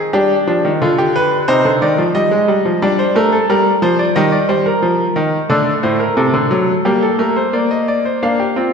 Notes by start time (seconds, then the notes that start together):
Already playing: D#3
0.13 G3 D4 G4
0.47 F3 D4
0.65 D#3
0.82 D3 F4
0.98 G4
1.16 B4
1.48 C3 D#4 C5
1.65 D3
1.82 D#3 D5
1.98 F3
2.15 G3 D#5
2.31 G#3
2.48 G3
2.65 F3
2.82 G3 D4 D5
2.99 C5
3.15 A3 A#4
3.32 A4
3.50 G3 A#4
3.82 F3 C5
3.99 D5
4.16 D#3 G3 D#5
4.32 D5
4.49 G3 C5
4.66 A#4
4.82 F3
5.16 D#3
5.50 D3 A3 D5
5.83 A2 C5
6.00 A#4
6.17 C3 A4
6.34 D3
6.51 F#3
6.85 G3 A#3 G4
7.02 A4
7.19 A3 A#4
7.36 C5
7.53 A#3 D5
7.71 D#5
7.88 D5
8.05 C5
8.23 A#3 D4 F5
8.40 G4
8.56 C4 F4